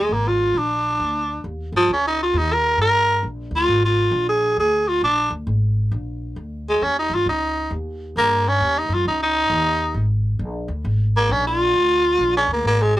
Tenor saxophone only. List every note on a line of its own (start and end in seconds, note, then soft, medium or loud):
0.00 0.14 G#3 medium
0.13 0.29 A#3 medium
0.28 0.59 F4 medium
0.58 1.43 D4 medium
1.76 1.90 F3 loud
1.92 2.05 C#4 medium
2.07 2.20 D#4 medium
2.23 2.40 F4 medium
2.38 2.54 D#4 medium
2.53 2.80 A#4 medium
2.82 3.23 A#4 loud
3.56 3.83 F4 loud
3.85 4.27 F4 medium
4.29 4.57 G#4 medium
4.59 4.90 G#4 medium
4.88 5.02 F4 medium
5.04 5.31 D4 loud
6.69 6.85 G#3 medium
6.83 6.97 C#4 medium
6.99 7.16 D#4 medium
7.14 7.27 F4 medium
7.29 7.71 D#4 medium
8.18 8.50 A#3 loud
8.48 8.80 C#4 medium
8.78 8.95 D#4 medium
8.94 9.07 F4 medium
9.08 9.21 D#4 medium
9.22 10.08 D#4 loud
11.17 11.33 A#3 loud
11.32 11.45 C#4 medium
11.47 12.32 F4 loud
12.37 12.50 C#4 medium
12.53 12.65 A#3 medium
12.67 12.83 A#3 loud
12.82 12.95 G#3 medium
12.97 13.00 G#3 loud